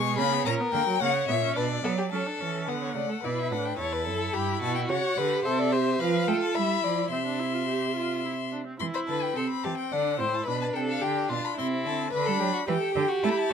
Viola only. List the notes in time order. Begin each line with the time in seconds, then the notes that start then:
Already playing: G#3
0.19 A#3
0.33 B3
0.47 C#4
0.60 B3
0.74 A#3
0.88 F#3
1.01 A#3
1.29 B3
1.42 C#4
1.57 D4
1.84 B3
2.12 C#4
2.27 D4
2.41 C#4
2.68 B3
2.96 A3
3.24 E4
3.52 D4
3.79 E4
4.89 F#4
5.17 G4
5.45 A4
5.73 G4
6.01 F4
6.56 E4
7.13 C4
7.26 D4
7.39 E4
7.54 F4
7.68 G4
7.96 F4
8.25 E4
8.52 D4
8.67 C4
8.80 E4
9.36 C4
9.92 D4
10.20 E4
10.48 D4
11.58 C4
12.14 D4
12.68 G4